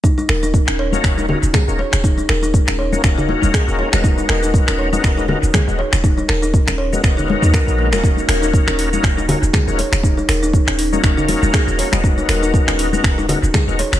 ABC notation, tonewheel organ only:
X:1
M:4/4
L:1/16
Q:"Swing 16ths" 1/4=120
K:Ebm
V:1 name="Tonewheel organ"
z6 z [B,DEGB]3 [B,DEGB] z2 [B,DEGB] z2 | z6 z [B,DEGB] [B,DEGB]6- [B,DEGB] [A,CEGB]- | [A,CEGB]6- [A,CEGB] [A,CEGB]3 [A,CEGB] z2 [A,CEGB] z2 | z6 z [A,CEGB] [A,CEGB]6- [A,CEGB] [B,DEGB]- |
[B,DEGB]6- [B,DEGB] [B,DEGB]3 [B,DEGB] z2 [B,DEGB] z2 | z6 z [B,DEGB] [B,DEGB]6- [B,DEGB] [A,CEGB]- | [A,CEGB]6- [A,CEGB] [A,CEGB]3 [A,CEGB] z2 [A,CEGB] z2 |]